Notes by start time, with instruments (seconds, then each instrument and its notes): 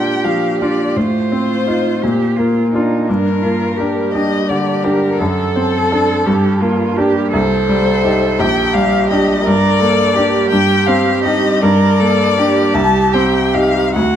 Already playing: grand piano A#2 A#3 D4 F4, cello G4, violin G5
0.24 grand piano F3, violin F5
0.61 grand piano D4 F4, violin D5
0.96 grand piano A2, cello F4, violin C5
1.32 grand piano C4
1.67 grand piano D#4 F4
2.02 grand piano A#2, cello G4
2.36 grand piano A#3, cello F4
2.73 grand piano D4 F4, cello D#4
3.08 grand piano G2, cello D4, violin A#4
3.42 grand piano A#3, cello F4
3.77 grand piano D4 G4, cello G4
4.14 grand piano D4 G4, violin D#5
4.49 grand piano D3, violin D5
4.83 grand piano D4 G4, violin A#4
5.18 grand piano F#2, cello A4, violin A4
5.56 grand piano C4
5.92 grand piano D4 A4
6.26 grand piano G2, cello G4
6.62 grand piano A#3, cello F4
6.97 grand piano D4 G4, cello G4
7.33 grand piano C2, cello A4, violin C5
7.69 grand piano G3
8.04 grand piano D#4 G4
8.39 grand piano A#1, cello G4, violin G5
8.74 grand piano G3, violin F5
9.10 grand piano D4 G4, violin D#5
9.45 grand piano G2, cello A#4, violin D5
9.79 grand piano A#3, cello A4
10.16 grand piano D4 G4, cello G4
10.51 grand piano G2, violin G5
10.86 grand piano C4, violin F5
11.24 grand piano D#4 G4, violin D#5
11.61 grand piano G2, cello A#4, violin D5
12.00 grand piano A#3, cello A4
12.37 grand piano D4 G4, cello G4
12.75 grand piano C2, violin A5
13.14 grand piano C4, violin G5
13.54 grand piano D#4 G4, violin F5
13.95 grand piano D2, cello F#4, violin F#5